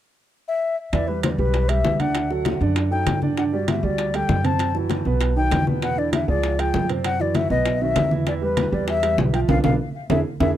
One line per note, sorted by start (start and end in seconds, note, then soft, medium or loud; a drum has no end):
0.48 0.76 E5 medium
0.93 1.35 E2 medium
0.93 1.05 E3 medium
0.93 1.05 E4 medium
0.93 1.09 D5 medium
0.93 1.06 E5 medium
0.93 high bongo medium
0.93 high conga soft
0.93 high timbale medium
1.08 1.33 G3 medium
1.08 1.33 G4 medium
1.08 1.22 B4 medium
1.08 1.33 B4 medium
1.08 high conga soft
1.23 1.29 C5 medium
1.23 high bongo medium
1.23 high conga medium
1.23 high timbale loud
1.23 low timbale medium
1.38 1.81 B1 medium
1.38 1.64 G3 medium
1.38 1.64 G4 medium
1.38 1.70 B4 medium
1.38 1.64 B4 medium
1.38 high conga soft
1.54 high bongo medium
1.54 high conga soft
1.54 high timbale medium
1.69 1.94 G3 medium
1.69 1.94 G4 medium
1.69 1.95 B4 medium
1.69 2.02 E5 loud
1.69 high conga soft
1.69 high timbale medium
1.84 2.55 D2 medium
1.84 high bongo medium
1.84 low bongo medium
1.84 high conga medium
1.84 low timbale medium
2.00 2.25 D3 medium
2.00 2.25 D4 medium
2.00 2.25 D5 medium
2.00 2.31 F#5 medium
2.00 high conga medium
2.00 high timbale medium
2.15 high bongo medium
2.15 high conga soft
2.15 high timbale medium
2.30 2.55 F#3 medium
2.30 2.55 F#4 medium
2.30 2.56 A4 medium
2.30 high bongo soft
2.30 high conga soft
2.45 high bongo medium
2.45 high conga medium
2.45 high timbale medium
2.45 low timbale medium
2.61 3.03 F#2 medium
2.61 2.86 D3 medium
2.61 2.86 D4 medium
2.61 2.86 D5 medium
2.61 high bongo soft
2.61 high conga soft
2.76 high bongo medium
2.76 high timbale medium
2.91 3.16 F#3 medium
2.91 3.16 D#4 medium
2.91 3.16 A4 medium
2.91 3.20 G5 medium
2.91 high conga soft
3.06 3.77 G2 medium
3.06 high bongo medium
3.06 low bongo medium
3.06 high conga medium
3.06 high timbale medium
3.06 low timbale medium
3.22 3.35 D3 medium
3.22 3.35 D4 medium
3.22 3.35 D5 medium
3.22 high bongo soft
3.22 high conga medium
3.37 3.50 D3 medium
3.37 3.50 D4 medium
3.37 3.50 D5 medium
3.37 3.44 F#5 medium
3.37 high bongo medium
3.37 high conga soft
3.37 high timbale medium
3.53 3.78 G3 medium
3.53 3.78 F#4 medium
3.53 3.78 G4 medium
3.53 3.70 D5 medium
3.53 high conga soft
3.68 3.85 E5 medium
3.68 high bongo medium
3.68 high conga medium
3.68 high timbale loud
3.68 low timbale medium
3.83 4.26 D2 medium
3.83 4.08 G3 medium
3.83 4.08 F#4 medium
3.83 4.09 G4 medium
3.83 4.17 D5 medium
3.83 high conga soft
3.98 high bongo medium
3.98 high conga soft
3.98 high timbale medium
4.14 4.39 G3 medium
4.14 4.39 G4 medium
4.14 4.39 A4 medium
4.14 4.47 G5 loud
4.14 high conga soft
4.14 high timbale medium
4.29 5.00 F#2 medium
4.29 high bongo medium
4.29 low bongo medium
4.29 high conga medium
4.29 low timbale medium
4.44 4.69 C3 medium
4.44 4.69 C4 medium
4.44 4.70 C5 medium
4.44 4.76 A5 loud
4.44 high conga medium
4.44 high timbale medium
4.59 high bongo medium
4.59 high conga soft
4.59 high timbale medium
4.75 5.00 E3 medium
4.75 5.00 E4 medium
4.75 5.01 F#4 medium
4.75 high bongo soft
4.75 high conga soft
4.90 high bongo medium
4.90 high conga medium
4.90 high timbale medium
4.90 low timbale medium
5.05 5.48 B1 medium
5.05 5.31 B2 medium
5.05 5.31 B3 medium
5.05 5.31 B4 medium
5.05 high bongo soft
5.05 high conga soft
5.21 high bongo medium
5.21 high timbale medium
5.36 5.61 D#3 medium
5.36 5.62 F#3 medium
5.36 5.61 D#4 medium
5.36 5.65 G5 loud
5.36 high conga soft
5.51 6.22 E2 medium
5.51 high bongo medium
5.51 low bongo medium
5.51 high conga medium
5.51 high timbale loud
5.51 low timbale medium
5.67 5.79 B2 medium
5.67 5.79 B3 medium
5.67 5.80 B4 medium
5.67 high bongo soft
5.67 high conga medium
5.82 5.95 B2 medium
5.82 5.95 B3 medium
5.82 5.95 B4 medium
5.82 6.00 F#5 medium
5.82 high bongo medium
5.82 high conga soft
5.82 high timbale medium
5.97 6.22 D3 medium
5.97 6.22 D4 medium
5.97 6.23 E4 medium
5.97 6.13 D5 medium
5.97 high conga soft
6.13 6.27 E5 medium
6.13 high bongo medium
6.13 high conga medium
6.13 high timbale medium
6.13 low timbale medium
6.28 6.71 C#2 medium
6.28 6.53 F3 medium
6.28 6.53 F4 medium
6.28 6.53 G#4 medium
6.28 6.61 D5 medium
6.28 high conga soft
6.43 high bongo medium
6.43 high conga soft
6.43 high timbale medium
6.59 6.84 F3 medium
6.59 6.84 F4 medium
6.59 6.84 G#4 medium
6.59 6.90 G5 loud
6.59 high conga soft
6.59 high timbale medium
6.74 7.45 F#2 medium
6.74 high bongo medium
6.74 low bongo medium
6.74 high conga medium
6.74 low timbale medium
6.89 7.14 C3 medium
6.89 7.15 C4 medium
6.89 7.15 C5 medium
6.89 high timbale medium
7.04 7.23 F#5 loud
7.04 high bongo medium
7.04 high conga soft
7.04 high timbale medium
7.20 7.45 E3 medium
7.20 7.45 E4 medium
7.20 7.45 F#4 medium
7.20 7.37 D5 medium
7.20 high bongo soft
7.20 high conga soft
7.35 7.50 E5 medium
7.35 high bongo medium
7.35 high conga medium
7.35 high timbale medium
7.35 low timbale medium
7.50 7.93 B1 medium
7.50 7.75 B2 medium
7.50 7.76 B3 medium
7.50 7.76 B4 medium
7.50 7.83 D#5 medium
7.50 high bongo soft
7.50 high conga soft
7.66 high bongo medium
7.66 high conga soft
7.66 high timbale medium
7.81 8.06 D#3 medium
7.81 8.06 C4 medium
7.81 8.06 F#4 medium
7.81 8.12 E5 loud
7.81 high conga soft
7.96 8.67 E2 medium
7.96 high bongo medium
7.96 low bongo medium
7.96 high conga medium
7.96 high timbale medium
7.96 low timbale medium
8.11 8.24 E3 medium
8.11 8.24 E4 medium
8.11 8.24 E5 medium
8.11 high bongo soft
8.11 high conga medium
8.26 8.39 E3 medium
8.26 8.39 E4 medium
8.26 8.34 D5 medium
8.26 8.39 E5 medium
8.26 high bongo medium
8.26 high conga soft
8.26 high timbale medium
8.41 8.67 G3 medium
8.41 8.67 G4 medium
8.41 8.67 B4 medium
8.41 8.75 B4 medium
8.41 high conga soft
8.57 high bongo medium
8.57 high conga medium
8.57 high timbale loud
8.57 low timbale medium
8.72 9.15 E2 medium
8.72 8.97 G3 medium
8.72 8.97 G4 medium
8.72 8.98 B4 medium
8.72 8.88 D5 medium
8.72 high conga soft
8.87 9.17 E5 loud
8.87 high bongo medium
8.87 high conga soft
8.87 high timbale medium
9.03 9.28 G3 medium
9.03 9.28 G4 medium
9.03 9.28 B4 medium
9.03 high conga soft
9.03 high timbale medium
9.18 9.47 B1 medium
9.18 high bongo medium
9.18 low bongo medium
9.18 high conga medium
9.18 low timbale medium
9.33 9.46 F3 medium
9.33 9.46 F4 medium
9.33 9.46 F5 medium
9.33 9.40 G5 medium
9.33 high timbale medium
9.48 9.60 B1 medium
9.48 9.59 B3 medium
9.48 9.59 D4 medium
9.48 9.59 F4 loud
9.48 9.59 F5 loud
9.48 low bongo medium
9.48 high conga medium
9.48 high timbale medium
9.64 9.76 B1 medium
9.64 9.74 B3 medium
9.64 9.74 D4 medium
9.64 9.74 F4 medium
9.64 9.74 F5 medium
9.64 low bongo medium
9.64 high conga medium
9.64 high timbale medium
10.10 10.21 E2 medium
10.10 10.20 D4 medium
10.10 10.20 E4 medium
10.10 10.20 G#4 medium
10.10 10.20 E5 medium
10.10 low bongo medium
10.10 high conga medium
10.10 high timbale medium
10.40 10.52 E2 medium
10.40 10.50 D4 medium
10.40 10.50 E4 medium
10.40 10.50 G#4 medium
10.40 10.50 E5 medium
10.40 low bongo medium
10.40 high conga medium
10.40 high timbale medium